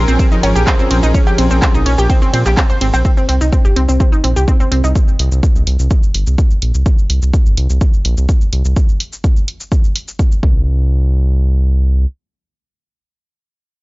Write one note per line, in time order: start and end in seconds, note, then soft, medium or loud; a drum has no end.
0.00 3.01 F3 medium
0.00 3.01 C#4 medium
0.00 3.01 G#4 medium
0.00 3.01 A#4 medium
0.08 0.17 A#1 medium
0.08 0.17 C4 medium
0.08 0.17 C5 medium
0.08 shaker medium
0.19 0.26 C4 medium
0.19 0.26 C5 medium
0.19 kick loud
0.19 ride medium
0.19 shaker medium
0.32 0.35 D#4 medium
0.32 0.35 D#5 medium
0.32 shaker soft
0.43 0.53 G#1 loud
0.43 0.50 C#4 medium
0.43 0.50 C#5 medium
0.43 open hi-hat loud
0.43 ride medium
0.43 low woodblock medium
0.55 0.65 A#1 medium
0.55 0.65 G4 medium
0.55 0.65 G5 medium
0.55 shaker medium
0.67 0.74 C4 medium
0.67 0.74 C5 medium
0.67 kick loud
0.67 clap loud
0.67 ride medium
0.67 shaker medium
0.79 0.88 C4 medium
0.79 0.88 C5 medium
0.79 shaker soft
0.91 1.01 A#1 medium
0.91 0.97 C4 medium
0.91 0.97 C5 medium
0.91 open hi-hat medium
0.91 ride medium
1.03 1.12 A#1 medium
1.03 1.07 D#4 medium
1.03 1.07 D#5 medium
1.03 shaker medium
1.14 1.21 C#4 medium
1.14 1.21 C#5 medium
1.14 kick loud
1.14 ride medium
1.14 shaker medium
1.27 1.36 G4 medium
1.27 1.36 G5 medium
1.27 low woodblock medium
1.27 shaker soft
1.38 1.48 A#1 loud
1.38 1.45 C4 medium
1.38 1.45 C5 medium
1.38 open hi-hat loud
1.38 ride medium
1.51 1.60 A#1 medium
1.51 1.60 C4 medium
1.51 1.60 C5 medium
1.51 shaker medium
1.62 1.69 C4 medium
1.62 1.69 C5 medium
1.62 kick loud
1.62 clap loud
1.62 ride medium
1.62 shaker medium
1.74 1.84 A#1 medium
1.74 1.78 D#4 medium
1.74 1.78 D#5 medium
1.74 shaker soft
1.86 1.96 A#1 loud
1.86 1.92 C#4 medium
1.86 1.92 C#5 medium
1.86 open hi-hat medium
1.86 ride medium
1.98 2.08 A#1 medium
1.98 2.07 G4 medium
1.98 2.07 G5 medium
1.98 shaker medium
2.10 2.16 C4 medium
2.10 2.16 C5 medium
2.10 kick loud
2.10 ride medium
2.10 low woodblock medium
2.10 shaker medium
2.22 2.31 C4 medium
2.22 2.31 C5 medium
2.22 shaker soft
2.33 2.44 A#2 loud
2.33 2.37 C4 medium
2.33 2.37 C5 medium
2.33 open hi-hat loud
2.33 ride medium
2.46 2.55 A#1 medium
2.46 2.50 G4 medium
2.46 2.50 G5 medium
2.46 clap soft
2.46 shaker medium
2.57 2.61 C4 medium
2.57 2.61 C5 medium
2.57 kick loud
2.57 clap loud
2.57 ride medium
2.57 shaker medium
2.70 2.79 C5 medium
2.70 2.79 C6 medium
2.70 shaker soft
2.81 2.91 G#1 loud
2.81 2.85 C4 medium
2.81 2.85 C5 medium
2.81 open hi-hat medium
2.81 ride medium
2.93 3.03 A#1 medium
2.93 3.00 C4 medium
2.93 3.00 C5 medium
2.93 low woodblock medium
2.93 shaker medium
3.05 3.12 C4 medium
3.05 kick loud
3.05 shaker medium
3.17 3.27 C4 medium
3.17 shaker soft
3.29 3.39 C2 medium
3.29 3.35 C4 medium
3.29 open hi-hat loud
3.41 3.50 C2 medium
3.41 3.45 D#4 medium
3.41 shaker medium
3.52 3.59 C4 medium
3.52 kick loud
3.52 shaker medium
3.65 3.74 G1 medium
3.65 3.74 G4 medium
3.65 shaker soft
3.76 3.86 C2 medium
3.76 3.83 C4 medium
3.76 open hi-hat medium
3.88 3.98 C2 medium
3.88 3.98 C4 medium
3.88 shaker medium
4.00 4.07 C4 medium
4.00 kick loud
4.00 shaker medium
4.12 4.16 D#4 medium
4.12 shaker soft
4.24 4.34 A#1 medium
4.24 4.31 C4 medium
4.24 open hi-hat loud
4.36 4.46 C2 medium
4.36 4.46 G4 medium
4.36 shaker medium
4.48 4.54 C4 medium
4.48 kick loud
4.48 shaker medium
4.60 4.69 C4 medium
4.60 shaker soft
4.72 4.82 C2 loud
4.72 4.78 C4 medium
4.72 open hi-hat medium
4.84 4.93 C2 medium
4.84 4.88 D#4 medium
4.84 shaker medium
4.96 kick loud
4.96 shaker medium
5.08 shaker soft
5.19 5.29 C2 medium
5.19 open hi-hat loud
5.32 5.41 C2 medium
5.32 shaker medium
5.43 kick loud
5.43 shaker medium
5.55 5.65 C2 medium
5.55 shaker soft
5.67 5.77 C2 medium
5.67 open hi-hat medium
5.79 5.89 C2 medium
5.79 shaker medium
5.91 kick loud
5.91 shaker medium
6.03 shaker soft
6.14 6.24 G1 medium
6.14 open hi-hat loud
6.27 6.36 C2 medium
6.27 shaker medium
6.38 kick loud
6.38 shaker medium
6.51 shaker soft
6.62 6.72 A#1 loud
6.62 open hi-hat medium
6.74 6.84 C2 medium
6.74 shaker medium
6.86 kick loud
6.86 shaker medium
6.98 shaker soft
7.10 7.20 C2 medium
7.10 open hi-hat loud
7.22 7.31 C2 medium
7.22 shaker medium
7.34 kick loud
7.34 shaker medium
7.46 7.55 G1 medium
7.46 shaker soft
7.57 7.67 C2 medium
7.57 open hi-hat loud
7.70 7.79 C2 medium
7.70 shaker medium
7.81 kick loud
7.81 shaker medium
7.94 shaker soft
8.05 8.15 A#1 medium
8.05 open hi-hat loud
8.17 8.27 C2 medium
8.17 shaker medium
8.29 kick loud
8.29 shaker medium
8.41 shaker soft
8.53 8.63 C2 medium
8.53 open hi-hat medium
8.65 8.74 C2 medium
8.65 shaker medium
8.76 kick loud
8.76 shaker medium
8.89 shaker soft
9.00 open hi-hat loud
9.13 shaker medium
9.24 kick loud
9.24 shaker soft
9.37 shaker soft
9.48 open hi-hat medium
9.60 shaker medium
9.72 kick loud
9.72 shaker medium
9.84 shaker soft
9.96 open hi-hat loud
10.08 shaker medium
10.19 kick loud
10.19 shaker soft
10.32 shaker soft
10.43 12.06 C2 loud
10.43 kick loud